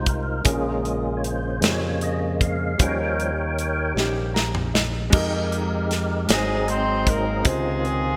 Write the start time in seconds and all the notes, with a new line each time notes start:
Already playing: C2 G#2 G3 G#3 D#4 F4 G4 C5
0.06 A#4, kick, closed hi-hat
0.43 A#1 A#2 C#3 G#3 A#3 C#4 F4 G#4, kick, closed hi-hat
0.48 A#4
0.85 closed hi-hat
1.17 C#5
1.24 C5, closed hi-hat
1.60 F2 G#3 C#4 F4, snare, closed hi-hat
1.64 G4 C#5
1.70 G#4
2.01 D#5, closed hi-hat
2.41 F5, kick, closed hi-hat
2.78 D#2 D#3 F3 G3 C#4 D#4 G#4 A#4 C#5, kick, closed hi-hat
2.82 C#4 G5
2.88 A#4
3.20 closed hi-hat
3.59 closed hi-hat
3.94 A#1 G3 C#4 D#4 G4, snare
4.34 A#5, snare
4.55 mid tom
4.74 D#5, snare
5.10 F2 G#3 D#4 G4, kick, crash
5.14 A4 A#4
5.19 A#4
5.52 closed hi-hat
5.91 snare, closed hi-hat
6.27 G#1 G#2 G#3 C4 D#4 F#4, snare, closed hi-hat
6.31 F#3 G#3 G4 G#4 B4
6.37 G#4 C5
6.68 C4 C5, closed hi-hat
7.07 A#3 A#4, kick, closed hi-hat
7.42 C#2 C3 C#3 D#3 C4 D#4 E4 F4 C5, kick, closed hi-hat
7.48 G#3 F4 G#4
7.85 closed hi-hat